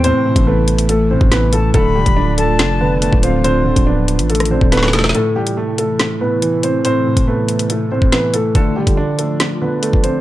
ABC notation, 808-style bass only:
X:1
M:4/4
L:1/16
Q:1/4=141
K:Am
V:1 name="808-style bass" clef=bass
E,, z2 A,,,8 A,,,4- A,,, | D,,,3 D,,,4- D,,, F,,,4- F,,, D,,,3- | D,,,3 D,,,4 A,,,4 D,,,3 E,,,2 | z16 |
z16 | z16 |]